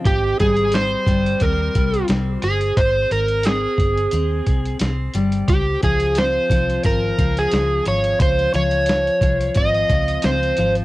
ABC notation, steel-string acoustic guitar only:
X:1
M:4/4
L:1/8
Q:"Swing 16ths" 1/4=88
K:Ab
V:1 name="Steel-string acoustic guitar" clef=bass
z G, C G, C G, C2- | C2 C2 C2 C G, | z F, C F, C F,2 F,- | F, F,2 F, C F, C F, |]